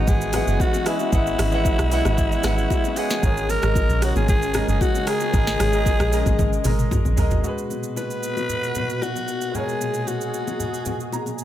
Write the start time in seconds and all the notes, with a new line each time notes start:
Already playing: E3 G#3 B3 C#4 F#4 G#4 B4 D#5 E5 F#5 G#5
0.07 G#1 G#4, kick, low conga, shaker
0.21 shaker
0.32 G#3 G#4 B4 D#5 E5 F#5, cross-stick, open hi-hat, low bongo, low conga, shaker
0.47 F#1, shaker
0.60 F#4, kick, high bongo, shaker
0.73 low bongo, shaker
0.85 G#3 E4 G#4 B4 D#5 E5 G#5, cross-stick, open hi-hat, shaker
0.99 high bongo, shaker
1.11 G#1 G#3 G#4 B4 D#5 E5 F#5, kick, low conga, shaker
1.27 shaker
1.39 G#1, cross-stick, open hi-hat, low bongo, shaker
1.51 G#3 G#4 B4 D#5 E5 F#5, shaker
1.65 kick, high bongo, shaker
1.79 B1, cross-stick, shaker
1.90 G#3 G#4 B4 D#5 E5 F#5, open hi-hat, shaker
2.05 G#1, cross-stick, high bongo, low bongo, shaker
2.18 kick, low conga, shaker
2.32 shaker
2.43 G#1 G#3 G#4 B4 D#5 E5 F#5, cross-stick, snare, open hi-hat, low bongo, low conga, shaker
2.58 shaker
2.70 kick, high bongo, shaker
2.84 low bongo, shaker
2.95 G#3 G#4 B4 D#5 E5 F#5, open hi-hat, shaker
3.10 snare, high bongo, shaker
3.21 G#1 C#3 G#3 G#4 A#4 C#5, kick, low conga, shaker
3.37 shaker
3.49 A#4, open hi-hat, low bongo, shaker
3.62 G#1 G#3 G#4 A#4 D#5, cross-stick, shaker
3.75 kick, high bongo, shaker
3.89 A#1, shaker
4.00 G#3 F#4 G#4 A#4 C#5, cross-stick, open hi-hat, shaker
4.16 G#1 G#4, high bongo, low bongo, shaker
4.28 G#1 G#4, kick, low conga, shaker
4.42 shaker
4.53 G#3 G#4 A#4 D#5, cross-stick, open hi-hat, low bongo, low conga, shaker
4.68 F#1 G#4, shaker
4.81 F#4, kick, high bongo, shaker
4.95 low bongo, shaker
5.06 G#3 G#4 A#4 D#5, cross-stick, open hi-hat, shaker
5.20 high bongo, shaker
5.32 G#1 G#3 G#4 A#4 D#5, kick, low conga, shaker
5.47 snare, shaker
5.60 G#1, cross-stick, open hi-hat, low bongo, shaker
5.72 G#3 G#4 A#4 D#5, shaker
5.86 kick, high bongo, shaker
6.00 A#1, cross-stick, shaker
6.11 G#3 G#4 A#4 D#5, open hi-hat, shaker
6.26 G#1, kick, high bongo, low bongo, shaker
6.39 kick, high tom, low conga, shaker
6.53 shaker
6.64 G#1 G#3 G#4 A#4 D#5, open hi-hat, mid tom, low bongo, low conga, shaker
6.79 mid tom, shaker
6.91 kick, mid tom, high bongo, shaker
7.05 A#1, low bongo, shaker
7.16 A#1 G#3 G#4 A#4 D#5, floor tom, open hi-hat, shaker
7.31 G#1, floor tom, high bongo, shaker
7.41 A#2 B2 G#3 F#4, low conga, shaker
7.46 G#4 B4
7.58 shaker
7.70 low bongo, shaker
7.83 shaker
7.96 B4, high bongo, shaker
8.10 shaker
8.23 shaker
8.37 high bongo, low bongo, shaker
8.49 low conga, shaker
8.63 shaker
8.75 low bongo, low conga, shaker
8.90 shaker
9.02 F#4, high bongo, shaker
9.16 low bongo, shaker
9.28 shaker
9.41 shaker
9.51 G#3 F#4 G#4, low conga, shaker
9.56 A#4 C#5
9.69 shaker
9.81 low bongo, shaker
9.94 shaker
10.07 F#4, high bongo, shaker
10.21 shaker
10.34 shaker
10.47 high bongo, low bongo, shaker
10.60 low conga, shaker
10.74 shaker
10.85 low bongo, low conga, shaker
11.00 shaker
11.12 A#5, high bongo, shaker
11.26 low bongo, shaker
11.38 shaker